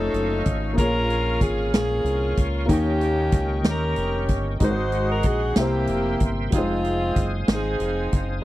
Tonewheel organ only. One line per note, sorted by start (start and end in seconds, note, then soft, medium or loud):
0.00 0.77 A4 medium
0.00 0.77 D#5 medium
0.00 2.66 F5 soft
0.00 4.58 C#6 medium
0.78 4.58 A#4 medium
0.78 2.68 G#5 medium
2.69 5.54 D#5 medium
2.69 4.59 G5 soft
4.61 5.56 G#4 medium
4.61 5.57 F#5 soft
4.61 6.51 C6 medium
5.57 6.52 A#4 medium
5.57 6.52 E5 medium
5.57 6.52 G5 medium
6.53 8.43 C5 medium
6.53 8.44 F5 medium
6.53 8.44 G#5 medium
6.53 8.43 D#6 medium